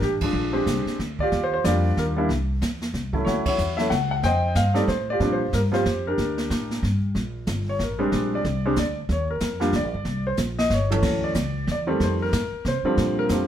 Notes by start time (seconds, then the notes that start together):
Already playing: D4
0.02 A1 G4, kick, snare
0.21 F3 G#3 D4, kick, ride
0.33 A#1, brush sweep
0.53 G#3 C4 D4 G4
0.66 C2, kick, snare, hi-hat pedal
0.86 muted upright bass stroke, snare
0.99 D2, kick, snare
1.19 F4 G4 D5, kick
1.32 D#2, brush sweep, kick, snare
1.44 C5
1.54 C5
1.64 F2 G3 A#3 D4 F4 G4 D5, kick, snare, hi-hat pedal
1.97 D#2 A#4, kick, snare
2.16 G3 A#3 D4 E4
2.29 C2, brush sweep, kick, snare
2.62 E2, kick, snare, hi-hat pedal
2.82 snare
2.94 C2, kick, snare
3.13 F#3 A3 C#4 E4, kick
3.25 D2 E4 F#4 C#5, brush sweep, kick, snare
3.46 E4 F#4 C#5, muted upright bass stroke, kick, ride
3.58 E2, hi-hat pedal
3.77 F#3 A3 C#4 E4 E5, snare
3.90 C#2 F#5, kick, snare
4.11 F#5
4.23 F2 C5 D#5 G5, brush sweep, kick, snare
4.55 G2 F5, kick, snare, hi-hat pedal
4.74 G3 A3 C4 D#4 D5, snare
4.88 A2 C5, kick, snare
5.10 F4 G4 D5
5.20 A#2 F3 G3 C4 D4, brush sweep, kick, snare
5.33 C5
5.53 G2 A#4, kick, snare, hi-hat pedal
5.72 F3 G3 C4 F4 G4 C5, snare
5.85 F2, kick, snare
6.07 D4 G4 A#4
6.18 D2, brush sweep, kick, snare
6.38 snare
6.50 A2, kick, snare, hi-hat pedal
6.71 snare
6.83 G2, kick, snare
7.15 A#1, brush sweep, kick, snare
7.47 G1, kick, snare, hi-hat pedal
7.69 C#5
7.79 A1, kick, snare
7.83 A#4
7.99 G3 G#3 C4 D4
8.12 A#1, brush sweep, kick, snare
8.35 D5
8.44 C2, kick, snare
8.65 G3 G#3 C4 D4
8.76 D2 D5, kick, snare, hi-hat pedal
9.09 D#2 C#5, brush sweep, kick, snare
9.31 A#4
9.40 F2, kick, snare, hi-hat pedal
9.60 F3 G3 A#3 D4, snare
9.72 D2 D5, kick, snare
9.84 A#1
9.94 G1
10.05 C2, brush sweep, kick, snare
10.27 C5
10.37 A#1, snare, hi-hat pedal
10.59 D#5, snare
10.70 G1 C#5, snare
10.91 E3 F#3 A3 C#4, floor tom
11.02 D2, brush sweep, kick, snare, crash
11.24 D5
11.34 C#2, kick, snare, hi-hat pedal
11.67 E2, kick, snare
11.72 D5
11.87 D#3 G3 A3 C4
12.00 F2 C5, brush sweep, kick, snare
12.22 A#4
12.32 A2, kick, snare, hi-hat pedal
12.52 muted upright bass stroke
12.65 C3 C5, kick, snare
12.83 D3 F3 G3 C4, muted upright bass stroke
12.97 A#2, brush sweep, kick, snare
13.19 A#4
13.29 F2 D3 F3 G3 C4, kick, snare, hi-hat pedal